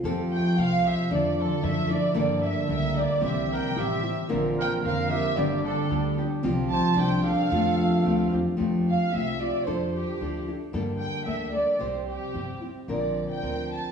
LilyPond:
<<
  \new Staff \with { instrumentName = "Violin section" } { \time 2/4 \key f \major \tempo 4 = 112 r8 g''8 f''8 e''8 | d''8 a'8 e''8 d''8 | d''8 e''8 e''8 d''8 | e''8 g''8 e''8. r16 |
r8 g''8 f''8 e''8 | d''8 a'4 r8 | r8 a''8 g''8 f''8~ | f''4. r8 |
r8 f''8 e''8 d''8 | c''8 g'4 r8 | r8 g''8 e''8 d''8 | c''8 g'4 r8 |
d''8. g''8. a''8 | }
  \new Staff \with { instrumentName = "Trumpet" } { \time 2/4 \key f \major r2 | r2 | r2 | g'8 bes'8 g'8. r16 |
r8 bes'8 bes'8 g'8 | g'8 d'4 r8 | r8 c''8 c''8 a'8~ | a'4. r8 |
r2 | r2 | r2 | r2 |
r2 | }
  \new Staff \with { instrumentName = "Nylon-string guitar" } { \time 2/4 \key f \major <f c' g' a'>4 <f c' g' a'>4 | <f d' e' a'>4 <f d' e' a'>8 <d' e' a'>8 | <g, d g bes d' a'>4 <g bes d' a'>8 <g bes d' a'>8 | <c g c' e' g'>4 <g c' e' g'>8 <c' e' g'>8 |
<bes, d f c' d' bes'>4 <f c' d' bes'>8 <f c' d' bes'>8 | <g, d g b d' g'>4 <g b d' g'>8 <g b d' g'>8 | <c f c' f' g'>4 <g c' d' g'>8 <g c' d' g'>8 | <f a c' f' g'>4 <a c' f' g'>8 <c' f' g'>8 |
<f a c' f' g'>4 <a c' f' g'>8 <c' f' g'>8 | <f d' e' a'>4 <f d' e' a'>8 <d' e' a'>8 | <g, d g bes d' a'>4 <g bes d' a'>8 <g bes d' a'>8 | <c g c' e' g'>4 <g c' e' g'>8 <c' e' g'>8 |
<bes, d f c' d' bes'>4 <f c' d' bes'>4 | }
  \new Staff \with { instrumentName = "Harp" } { \time 2/4 \key f \major f8 a8 c'8 g'8 | d8 f8 a8 e'8 | d8 a8 bes8 g'8 | e8 g8 c'8 g'8 |
d8 bes8 c'8 f'8 | d8 g8 b8 g'8 | f8 g8 d'8 g'8 | f8 a8 c'8 g'8 |
r2 | r2 | r2 | r2 |
r2 | }
  \new Staff \with { instrumentName = "Upright bass" } { \clef bass \time 2/4 \key f \major f,4 c,4 | f,4 ges,4 | g,4 des,4 | c,4 a,,4 |
bes,,4 f,4 | g,,4 d,4 | c,4 c,4 | f,4 d,8 e,8 |
f,4 c,4 | f,4 d,4 | g,4 d,4 | c,4 g,4 |
bes,,4 d,4 | }
>>